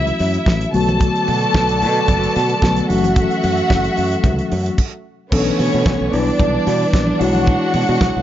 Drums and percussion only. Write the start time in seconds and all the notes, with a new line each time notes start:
0.07 closed hi-hat
0.19 snare, open hi-hat, muted conga
0.34 closed hi-hat
0.46 kick, snare, high conga
0.61 closed hi-hat
0.74 open hi-hat
0.89 closed hi-hat, high conga
1.00 kick, closed hi-hat, muted conga
1.16 closed hi-hat
1.28 open hi-hat, muted conga
1.41 closed hi-hat
1.54 kick, snare, high conga
1.69 closed hi-hat
1.82 open hi-hat
1.96 closed hi-hat
2.08 kick, closed hi-hat, muted conga, low conga
2.23 closed hi-hat
2.36 snare, open hi-hat, muted conga
2.50 closed hi-hat
2.62 kick, snare, high conga
2.76 closed hi-hat
2.90 open hi-hat
3.04 closed hi-hat, high conga
3.16 kick, closed hi-hat, muted conga
3.31 closed hi-hat
3.43 open hi-hat, muted conga
3.57 closed hi-hat
3.70 kick, snare, high conga
3.84 closed hi-hat
3.97 open hi-hat
4.11 closed hi-hat
4.24 kick, closed hi-hat, muted conga, low conga
4.39 closed hi-hat
4.51 open hi-hat, muted conga
4.66 closed hi-hat
4.78 kick, crash
5.32 kick, crash, muted conga
5.59 open hi-hat, muted conga
5.86 kick, snare, closed hi-hat, high conga
6.13 open hi-hat
6.39 kick, closed hi-hat, muted conga, low conga
6.67 snare, open hi-hat, muted conga
6.93 kick, snare, closed hi-hat, high conga
7.07 high conga
7.21 open hi-hat
7.35 high conga
7.46 kick, closed hi-hat, muted conga
7.74 open hi-hat, muted conga
8.01 kick, snare, closed hi-hat, high conga